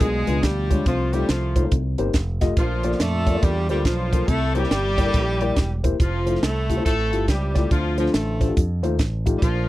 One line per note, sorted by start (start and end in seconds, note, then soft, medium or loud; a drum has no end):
0.00 0.24 B1 loud
0.00 0.66 B2 medium
0.00 0.45 G#3 medium
0.00 0.43 G#3 medium
0.00 0.42 D4 medium
0.00 0.83 F4 medium
0.00 0.43 G#4 loud
0.00 kick loud
0.00 closed hi-hat medium
0.27 0.41 C#2 medium
0.27 0.38 G#3 medium
0.27 0.38 D4 medium
0.27 0.38 F4 medium
0.27 0.38 B4 medium
0.27 closed hi-hat medium
0.43 0.80 D2 medium
0.43 0.86 G3 medium
0.43 0.83 D4 medium
0.43 0.86 G4 medium
0.43 kick medium
0.43 snare medium
0.43 closed hi-hat medium
0.70 0.81 G#3 medium
0.70 0.81 D4 medium
0.70 0.81 F4 medium
0.70 0.81 C#5 medium
0.70 kick medium
0.70 closed hi-hat medium
0.86 1.23 C2 medium
0.86 1.52 C3 medium
0.86 1.11 F3 medium
0.86 1.15 F3 medium
0.86 1.29 A3 medium
0.86 1.11 F4 medium
0.86 kick loud
0.86 closed hi-hat medium
1.12 1.28 G3 medium
1.12 1.31 G3 medium
1.12 1.24 A3 medium
1.12 1.24 D#4 medium
1.12 1.24 F4 medium
1.12 1.28 G4 medium
1.12 1.24 C5 medium
1.12 closed hi-hat medium
1.29 1.65 C2 medium
1.29 1.69 F3 medium
1.29 1.72 F3 medium
1.29 1.69 A3 medium
1.29 1.69 F4 medium
1.29 snare loud
1.29 closed hi-hat medium
1.55 1.61 A3 medium
1.55 1.61 D#4 medium
1.55 1.61 F4 medium
1.55 1.61 C5 medium
1.55 kick medium
1.55 closed hi-hat medium
1.63 1.72 A3 medium
1.63 1.72 D#4 medium
1.63 1.72 F4 medium
1.63 1.72 C5 medium
1.71 1.95 C2 loud
1.71 2.11 C3 medium
1.71 kick loud
1.71 closed hi-hat medium
1.98 2.12 G1 medium
1.98 2.09 A#3 medium
1.98 2.09 D#4 medium
1.98 2.09 G4 medium
1.98 2.10 C5 medium
1.98 closed hi-hat medium
2.14 2.51 F1 medium
2.14 kick medium
2.14 snare medium
2.14 closed hi-hat medium
2.41 2.52 A3 medium
2.41 2.52 F4 medium
2.41 2.52 G4 medium
2.41 2.52 D#5 medium
2.41 kick medium
2.41 snare soft
2.41 closed hi-hat medium
2.57 2.93 A#1 medium
2.57 3.23 A#2 medium
2.57 2.97 F3 medium
2.57 3.02 F3 medium
2.57 2.99 A3 medium
2.57 2.98 D4 medium
2.57 2.97 F4 medium
2.57 kick loud
2.57 closed hi-hat medium
2.83 2.95 A#3 medium
2.83 2.95 F4 medium
2.83 2.95 A4 medium
2.83 2.95 D5 medium
2.83 closed hi-hat medium
2.92 snare soft
2.99 3.36 F2 medium
2.99 3.42 A3 medium
2.99 3.45 A3 loud
2.99 3.42 D4 medium
2.99 3.82 F4 medium
2.99 3.42 A4 loud
2.99 snare loud
2.99 closed hi-hat medium
3.26 3.32 A#3 medium
3.26 3.32 F4 medium
3.26 3.32 A4 medium
3.26 3.32 D5 medium
3.26 kick medium
3.26 closed hi-hat medium
3.35 3.48 A#3 medium
3.35 3.48 F4 medium
3.35 3.48 A4 medium
3.35 3.48 D5 medium
3.43 3.70 E2 medium
3.43 3.68 G3 medium
3.43 3.70 G3 loud
3.43 3.84 D4 medium
3.43 3.68 G4 loud
3.43 kick loud
3.43 closed hi-hat medium
3.69 3.87 D2 medium
3.69 3.84 G3 medium
3.69 3.87 G3 medium
3.69 3.80 A#3 medium
3.69 3.80 F4 medium
3.69 3.84 G4 medium
3.69 3.80 A4 medium
3.69 3.81 C5 medium
3.69 closed hi-hat medium
3.85 4.22 B1 medium
3.85 4.28 F3 medium
3.85 4.29 F3 medium
3.85 4.26 A3 medium
3.85 4.25 D4 medium
3.85 4.28 F4 medium
3.85 kick medium
3.85 snare medium
3.85 closed hi-hat medium
4.12 4.23 A#3 medium
4.12 4.23 F4 medium
4.12 4.23 A4 medium
4.12 4.24 C5 medium
4.12 kick medium
4.12 closed hi-hat medium
4.28 4.65 C2 medium
4.28 4.94 C3 medium
4.28 4.55 A3 medium
4.28 4.55 E4 medium
4.28 4.55 A4 medium
4.28 kick loud
4.28 closed hi-hat medium
4.55 5.84 G3 loud
4.55 5.80 G3 loud
4.55 4.66 A#3 medium
4.55 5.80 A#3 medium
4.55 4.66 E4 medium
4.55 5.80 E4 medium
4.55 4.66 G4 medium
4.55 5.84 G4 loud
4.55 4.66 C5 medium
4.55 closed hi-hat medium
4.64 snare soft
4.71 5.07 G1 medium
4.71 snare loud
4.71 closed hi-hat medium
4.98 5.03 A#3 medium
4.98 5.03 E4 medium
4.98 5.03 G4 medium
4.98 5.03 D5 medium
4.98 kick medium
4.98 closed hi-hat medium
5.06 5.19 A#3 medium
5.06 5.19 E4 medium
5.06 5.19 G4 medium
5.06 5.19 A4 medium
5.14 5.50 A#1 medium
5.14 kick loud
5.14 closed hi-hat medium
5.41 5.52 A#3 medium
5.41 5.52 E4 medium
5.41 5.52 G4 medium
5.41 5.52 D5 medium
5.41 closed hi-hat medium
5.56 5.93 E1 medium
5.56 kick medium
5.56 snare medium
5.56 closed hi-hat medium
5.83 5.95 A#3 medium
5.83 5.94 E4 medium
5.83 5.95 G4 medium
5.83 5.95 C5 medium
5.83 kick medium
5.83 closed hi-hat medium
6.00 6.36 F1 medium
6.00 6.40 F3 medium
6.00 6.45 F3 medium
6.00 6.42 A3 medium
6.00 6.41 C4 medium
6.00 6.40 F4 medium
6.00 kick loud
6.00 closed hi-hat medium
6.26 6.37 A3 medium
6.26 6.37 E4 medium
6.26 6.37 F4 medium
6.26 6.37 C5 medium
6.26 closed hi-hat medium
6.35 snare soft
6.42 6.79 C2 medium
6.42 6.84 A3 medium
6.42 6.85 A3 loud
6.42 6.84 C4 medium
6.42 6.84 E4 medium
6.42 6.84 A4 medium
6.42 snare loud
6.42 closed hi-hat medium
6.69 6.75 A3 medium
6.69 6.75 E4 medium
6.69 6.75 F4 medium
6.69 6.75 G4 medium
6.69 kick medium
6.69 closed hi-hat medium
6.77 6.90 A3 medium
6.77 6.90 E4 medium
6.77 6.90 F4 medium
6.77 6.90 C5 medium
6.85 7.13 A1 medium
6.85 7.25 A3 medium
6.85 7.31 A3 medium
6.85 7.27 C4 medium
6.85 7.27 E4 medium
6.85 7.25 A4 loud
6.85 kick medium
6.85 closed hi-hat medium
7.12 7.26 G1 medium
7.12 7.23 A3 medium
7.12 7.23 E4 medium
7.12 7.23 F4 medium
7.12 7.23 G4 medium
7.12 closed hi-hat medium
7.28 7.65 C#2 medium
7.28 7.68 G3 medium
7.28 7.73 G3 medium
7.28 7.68 C4 medium
7.28 7.68 E4 medium
7.28 7.68 G4 medium
7.28 kick medium
7.28 snare medium
7.28 closed hi-hat medium
7.55 7.66 A3 medium
7.55 7.66 E4 medium
7.55 7.66 F4 medium
7.55 7.66 D5 medium
7.55 kick medium
7.55 snare soft
7.55 closed hi-hat medium
7.71 8.08 D2 medium
7.71 8.37 D3 medium
7.71 7.98 F3 medium
7.71 7.96 F3 medium
7.71 8.15 A3 medium
7.71 8.13 C4 medium
7.71 7.96 F4 medium
7.71 kick medium
7.71 closed hi-hat medium
7.97 8.13 F3 medium
7.97 8.15 F3 medium
7.97 8.09 A3 medium
7.97 8.09 D4 medium
7.97 8.09 F4 medium
7.97 8.13 F4 medium
7.97 8.09 C5 medium
7.97 closed hi-hat medium
8.06 snare soft
8.13 8.51 A1 medium
8.13 8.56 A3 medium
8.13 8.54 A3 medium
8.13 8.54 C4 medium
8.13 8.54 F4 medium
8.13 8.54 A4 medium
8.13 snare loud
8.13 closed hi-hat medium
8.40 8.46 A3 medium
8.40 8.46 D4 medium
8.40 8.46 F4 medium
8.40 8.46 C5 medium
8.40 kick medium
8.40 closed hi-hat medium
8.48 8.56 A3 medium
8.48 8.56 D4 medium
8.48 8.56 F4 medium
8.48 8.56 G4 medium
8.57 8.84 F2 medium
8.57 kick loud
8.57 closed hi-hat medium
8.83 8.98 D#2 medium
8.83 8.94 A3 medium
8.83 8.94 D#4 medium
8.83 8.94 F4 medium
8.83 8.94 C5 medium
8.83 closed hi-hat medium
8.99 9.36 A1 medium
8.99 kick medium
8.99 snare medium
8.99 closed hi-hat medium
9.25 9.37 A3 medium
9.25 9.37 D#4 medium
9.25 9.37 F4 medium
9.25 9.37 G4 medium
9.25 kick medium
9.25 closed hi-hat medium
9.38 9.69 A#2 medium
9.38 9.44 G3 medium
9.42 9.69 A#1 medium
9.42 9.69 F3 medium
9.42 9.69 A3 medium
9.42 9.69 D4 medium
9.42 9.69 F4 medium
9.42 kick loud
9.42 closed hi-hat medium